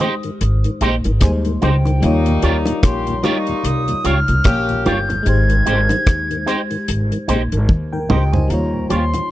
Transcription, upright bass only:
0.41 0.63 G#1 loud
0.81 1.03 A#1 medium
1.05 1.21 G#1 medium
1.22 1.59 D#2 medium
1.62 2.00 C#2 medium
2.02 2.40 D#2 loud
2.43 2.65 D#2 loud
2.83 3.21 A#1 medium
3.64 3.86 C2 medium
4.05 4.27 C#2 medium
4.29 4.44 C2 medium
4.45 4.83 A#1 loud
4.86 5.24 G1 medium
5.26 5.64 G#1 loud
5.67 5.89 G#1 medium
6.07 6.45 D#2 loud
6.88 7.10 G#1 medium
7.28 7.50 A#1 medium
7.52 7.68 G#1 medium
7.69 8.07 D#2 medium
8.10 8.48 C#2 medium
8.50 8.88 D#2 loud
8.90 9.13 D#2 medium

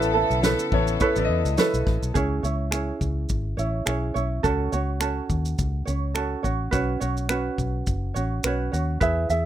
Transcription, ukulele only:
0.00 0.15 E4 loud
0.00 0.12 A4 medium
0.00 0.14 B4 medium
0.00 0.13 C#5 medium
0.14 0.42 E4 soft
0.14 0.42 A4 medium
0.14 0.43 B4 medium
0.42 1.01 E4 medium
0.42 1.01 A4 medium
0.42 1.00 B4 medium
0.42 1.00 C#5 medium
1.00 1.58 E4 medium
1.00 1.58 A4 medium
1.00 1.58 B4 medium
1.00 1.57 C#5 medium
1.57 2.15 E4 medium
1.57 2.15 A4 medium
1.57 2.14 B4 medium
1.57 2.16 C#5 medium
2.14 2.44 C#4 medium
2.14 2.43 E4 medium
2.14 2.43 G#4 medium
2.14 2.42 C#5 medium
2.43 2.71 C#4 soft
2.43 2.72 E4 soft
2.43 2.72 C#5 soft
2.71 3.60 C#4 medium
2.71 3.58 E4 medium
2.71 3.57 G#4 medium
2.71 3.57 C#5 medium
3.57 3.86 C#4 soft
3.57 3.86 E4 soft
3.57 3.85 C#5 medium
3.86 4.15 C#4 medium
3.86 4.14 E4 medium
3.86 4.15 G#4 medium
3.86 4.13 C#5 medium
4.14 4.43 C#4 soft
4.14 4.44 E4 soft
4.14 4.43 C#5 soft
4.43 4.72 C#4 medium
4.43 4.72 F#4 medium
4.43 4.72 A4 medium
4.43 4.71 C#5 medium
4.72 5.00 C#4 soft
4.72 5.01 F#4 soft
4.72 5.01 C#5 medium
5.00 5.87 C#4 medium
5.00 5.87 F#4 medium
5.00 5.85 A4 medium
5.00 5.85 C#5 medium
5.85 6.14 C#4 soft
5.85 6.14 C#5 medium
6.14 6.44 C#4 medium
6.14 6.43 F#4 medium
6.14 6.44 A4 medium
6.14 6.42 C#5 medium
6.43 6.71 C#4 soft
6.43 6.71 F#4 soft
6.43 6.72 C#5 soft
6.71 7.01 C#4 medium
6.71 7.01 F#4 medium
6.71 7.00 B4 medium
6.71 6.99 C#5 medium
7.00 7.29 C#4 soft
7.00 7.30 F#4 soft
7.00 7.29 C#5 soft
7.29 8.16 C#4 medium
7.29 8.15 F#4 medium
7.29 8.17 B4 medium
7.29 8.13 C#5 medium
8.14 8.44 C#4 soft
8.14 8.44 F#4 soft
8.14 8.43 C#5 medium
8.44 8.73 C#4 medium
8.44 8.72 F#4 medium
8.44 8.73 B4 medium
8.44 8.71 C#5 medium
8.72 9.01 C#4 soft
8.72 9.01 F#4 soft
8.72 9.00 C#5 soft
9.00 9.30 E4 medium
9.00 9.30 G#4 medium
9.00 9.29 B4 medium
9.00 9.29 E5 medium
9.30 9.46 E4 soft
9.30 9.46 G#4 soft
9.30 9.46 E5 medium

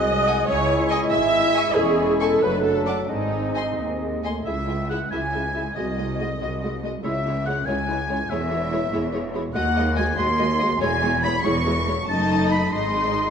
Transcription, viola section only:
0.00 0.49 D#5 loud
0.48 0.90 C#5 loud
0.90 0.98 D#5 loud
1.11 1.75 E5 loud
1.76 2.21 G#4 loud
2.20 2.42 A4 medium
2.42 2.64 B4 medium
2.64 2.86 A4 medium
2.86 2.94 D4 medium
3.09 3.77 D#4 medium
4.46 4.54 E4 medium
4.46 4.54 G#4 medium
4.67 4.76 E4 medium
4.67 4.75 G#4 soft
4.89 4.97 E4 medium
4.89 4.97 G#4 medium
5.11 5.19 E4 medium
5.11 5.19 G#4 medium
5.33 5.41 E4 medium
5.33 5.41 G#4 medium
5.55 5.63 E4 medium
5.55 5.63 G#4 soft
5.77 5.85 G#3 medium
5.77 5.85 F#4 medium
5.98 6.06 G#3 soft
5.98 6.06 F#4 soft
6.19 6.28 G#3 medium
6.19 6.27 F#4 medium
6.41 6.49 G#3 medium
6.41 6.49 F#4 medium
6.62 6.70 G#3 medium
6.62 6.70 F#4 medium
6.83 6.91 G#3 soft
6.83 6.91 F#4 soft
7.04 7.12 G#3 medium
7.04 7.12 E4 medium
7.25 7.33 G#3 medium
7.25 7.33 E4 medium
7.46 7.54 G#3 medium
7.46 7.54 E4 medium
7.68 7.76 G#3 medium
7.68 7.76 E4 medium
7.88 7.96 G#3 medium
7.88 7.96 E4 medium
8.09 8.17 G#3 medium
8.09 8.18 E4 medium
8.31 8.39 G#3 medium
8.31 8.39 E4 medium
8.51 8.59 G#3 medium
8.51 8.59 E4 medium
8.72 8.80 G#3 medium
8.72 8.80 E4 medium
8.92 9.00 G#3 medium
8.92 9.00 E4 medium
9.13 9.22 G#3 medium
9.13 9.21 E4 medium
9.34 9.42 G#3 medium
9.34 9.42 E4 medium
9.55 9.63 G#3 medium
9.55 9.63 F#4 medium
9.76 9.84 G#3 medium
9.76 9.84 F#4 medium
9.97 10.05 G#3 medium
9.97 10.05 F#4 medium
10.17 10.26 G#3 medium
10.17 10.25 F#4 medium
10.39 10.47 G#3 medium
10.39 10.47 F#4 medium
10.60 10.69 G#3 medium
10.60 10.68 F#4 medium
10.81 10.89 G#3 medium
10.81 10.89 E4 medium
11.02 11.10 G#3 medium
11.02 11.11 E4 medium
11.24 11.32 G#3 medium
11.24 11.32 E4 medium
11.45 11.53 G#3 medium
11.45 11.53 E4 medium
11.66 11.74 G#3 medium
11.66 11.74 E4 medium
11.87 11.95 G#3 medium
11.87 11.95 E4 medium
12.09 12.69 A3 medium
12.09 12.69 D#4 medium
12.73 13.30 G#3 medium
12.73 13.30 D#4 medium

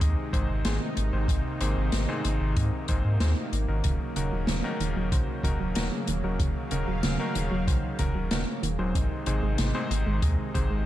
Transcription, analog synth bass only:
0.01 0.15 D#2 loud
0.33 0.47 G#1 medium
0.49 0.63 G#1 medium
0.65 0.79 G#1 loud
0.97 1.11 G#1 medium
1.13 1.27 G#1 medium
1.28 1.42 G#1 loud
1.61 1.75 G#1 medium
1.77 1.90 G#1 medium
1.93 2.06 G#1 loud
2.25 2.38 G#1 medium
2.41 2.54 G#1 medium
2.57 2.70 G#2 loud
2.89 3.02 G#1 medium
3.05 3.18 G#2 medium
3.20 3.34 D#2 loud
3.53 3.66 G#1 medium
3.68 3.82 G#1 medium
3.85 3.98 D#1 loud
4.16 4.30 D#1 medium
4.32 4.46 D#1 medium
4.48 4.62 D#1 loud
4.80 4.94 D#1 medium
4.96 5.10 D#1 medium
5.12 5.26 A#1 loud
5.43 5.57 D#1 medium
5.60 5.74 D#1 medium
5.76 5.89 D#1 loud
6.08 6.21 D#1 loud
6.24 6.37 D#1 medium
6.40 6.53 D#1 loud
6.72 6.85 D#1 medium
6.88 7.01 D#1 medium
7.04 7.17 D#1 loud
7.36 7.49 D#1 medium
7.51 7.65 D#1 medium
7.67 7.81 A#1 loud
7.99 8.13 D#1 medium
8.15 8.29 D#1 medium
8.31 8.45 D#1 loud
8.63 8.77 D#1 medium
8.79 8.93 D#1 medium
8.95 9.09 G#1 loud
9.27 9.40 G#1 loud
9.43 9.56 G#1 medium
9.59 9.72 G#1 loud
9.91 10.04 G#1 medium
10.07 10.20 G#1 medium
10.22 10.36 D#2 loud
10.55 10.68 G#1 loud
10.70 10.84 G#1 medium

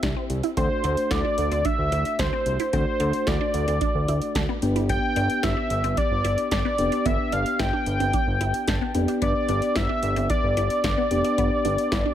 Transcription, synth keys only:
0.00 0.53 C4 medium
0.00 0.53 E4 medium
0.00 0.53 G4 medium
0.57 2.69 A3 medium
0.57 2.69 D4 medium
0.57 2.69 F#4 medium
2.73 4.59 A3 medium
2.73 4.59 D4 medium
2.73 4.59 F#4 medium
4.62 6.75 B3 medium
4.62 6.75 D4 medium
4.62 6.75 G4 medium
6.79 8.91 B3 medium
6.79 8.91 D4 medium
6.79 8.91 G4 medium
8.68 8.93 A5 medium
8.95 11.07 B3 medium
8.95 11.07 D4 medium
8.95 11.07 G4 medium
8.95 9.20 G5 medium
11.11 12.14 B3 medium
11.11 12.14 D4 medium
11.11 12.14 G4 medium

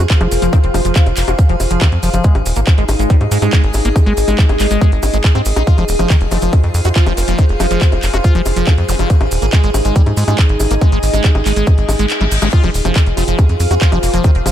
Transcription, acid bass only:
0.21 0.28 F3 loud
0.42 0.52 F3 medium
0.53 0.60 D#3 medium
0.74 0.81 F3 medium
0.85 0.95 F3 medium
0.96 1.06 F4 medium
1.28 1.32 F#4 medium
1.49 1.56 F3 loud
1.71 1.81 F3 medium
1.81 1.88 D#3 medium
2.03 2.10 F3 medium
2.14 2.24 F3 medium
2.24 2.34 G#3 medium
2.56 2.61 A#3 medium
2.78 2.85 G#3 loud
2.99 3.09 G#3 medium
3.10 3.17 G3 medium
3.31 3.38 G#3 medium
3.42 3.52 G#3 medium
3.53 3.63 G#3 medium
3.85 3.89 A#3 medium
4.06 4.13 G#3 loud
4.28 4.38 G#3 medium
4.39 4.46 G3 medium
4.60 4.67 G#3 medium
4.71 4.81 G#3 medium
5.14 5.18 G#3 medium
5.35 5.42 C4 loud
5.56 5.63 D#4 medium
5.67 5.77 F4 medium
5.78 5.85 F3 loud
5.99 6.09 F3 medium
6.10 6.17 D#3 medium
6.31 6.38 F3 medium
6.42 6.52 F3 medium
6.85 6.89 F#4 medium
6.96 7.06 F4 medium
7.06 7.13 F3 loud
7.28 7.38 F3 medium
7.39 7.46 D#3 medium
7.60 7.67 F3 medium
7.71 7.81 F3 medium
8.14 8.18 F#4 medium
8.24 8.34 F4 medium
8.35 8.42 F3 loud
8.56 8.67 F3 medium
8.67 8.74 D#3 medium
8.89 8.96 F3 medium
8.99 9.09 F3 medium
9.42 9.46 A#3 medium
9.53 9.63 G#3 medium
9.64 9.71 G#3 loud
9.85 9.95 G#3 medium
9.96 10.03 G3 medium
10.17 10.24 G#3 medium
10.28 10.38 G#3 medium
10.71 10.75 A#3 medium
10.81 10.92 G#3 medium
10.92 10.99 G#3 loud
11.14 11.24 G#3 medium
11.24 11.31 G3 medium
11.46 11.53 G#3 medium
11.56 11.67 G#3 medium
11.99 12.06 G#3 medium
12.21 12.25 G3 medium
12.42 12.49 G#3 medium
12.53 12.63 F4 medium
12.64 12.71 F3 loud
12.85 12.95 F3 medium
12.96 13.03 D#3 medium
13.17 13.24 F3 medium
13.28 13.38 F3 medium
13.71 13.75 F#4 medium
13.81 13.92 F4 medium
13.92 13.99 F3 loud
14.14 14.24 F3 medium
14.24 14.31 D#3 medium
14.46 14.52 F3 medium

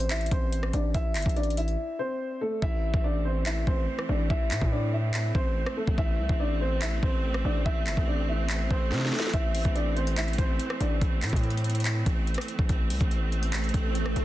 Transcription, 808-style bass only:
0.00 0.29 A1 loud
0.31 0.72 A1 loud
0.73 0.94 A1 loud
0.94 1.17 A1 loud
1.15 1.25 G1 loud
1.26 1.76 A1 loud
2.62 2.92 A1 loud
2.94 3.64 A1 loud
3.67 3.87 A1 loud
4.09 4.29 A1 loud
4.30 4.53 A1 loud
4.51 4.61 A2 loud
4.61 5.32 A2 loud
5.35 5.65 A1 loud
5.87 5.97 A1 loud
5.98 6.20 A1 loud
6.19 6.29 C2 loud
6.29 7.00 A1 loud
7.03 7.43 A1 loud
7.45 7.65 A1 loud
7.66 7.88 A1 loud
7.87 7.97 G1 loud
7.97 8.68 A1 loud
8.71 8.93 A1 loud
8.92 9.12 C3 loud
9.34 9.64 A1 loud
9.65 10.36 A1 loud
10.38 10.59 A1 loud
10.80 11.01 A1 loud
11.01 11.24 A1 loud
11.22 11.32 A2 loud
11.33 12.03 A2 loud
12.06 12.37 A1 loud
12.59 12.69 A1 loud
12.69 12.92 A1 loud
12.90 13.00 C2 loud
13.01 13.71 A1 loud
13.74 14.14 A1 loud
14.16 14.25 A1 loud

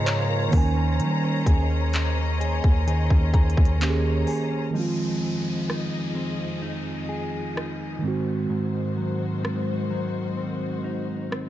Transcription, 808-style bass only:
0.00 0.49 G#2 loud
0.53 1.02 D#2 loud
1.00 1.45 G3 medium
1.47 2.60 D#2 loud
2.64 3.09 D#2 loud
3.11 3.33 D#2 loud
3.34 3.57 D#2 loud
3.58 4.25 D#2 loud

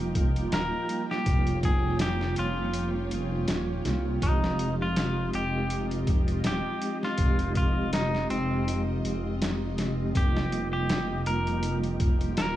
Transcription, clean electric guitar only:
0.54 1.04 A#4 medium
1.11 1.59 G4 medium
1.65 1.98 G#4 medium
2.01 2.34 G4 medium
2.39 2.90 F4 medium
4.23 4.74 D#4 medium
4.82 5.29 F4 medium
5.35 5.86 G4 medium
6.47 6.97 G4 medium
7.04 7.52 F4 medium
7.57 7.90 F4 medium
7.94 8.27 D#4 medium
8.30 8.82 C4 medium
10.17 10.67 G4 loud
10.73 11.21 G4 loud
11.27 11.78 A#4 medium
12.38 12.56 A#4 loud

